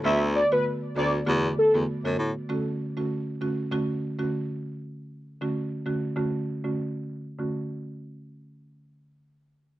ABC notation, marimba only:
X:1
M:4/4
L:1/16
Q:"Swing 16ths" 1/4=98
K:D
V:1 name="Marimba"
[D,A,B,F]3 [D,A,B,F] z2 [D,A,B,F] z [D,A,B,F] z2 [D,A,B,F] z [D,A,B,F] z2 | [D,A,CF]3 [D,A,CF] z2 [D,A,CF] z [D,A,CF]3 [D,A,CF] z4 | z3 [D,A,CF] z2 [D,A,CF] z [D,A,CF]3 [D,A,CF] z4 | [D,A,CF]16 |]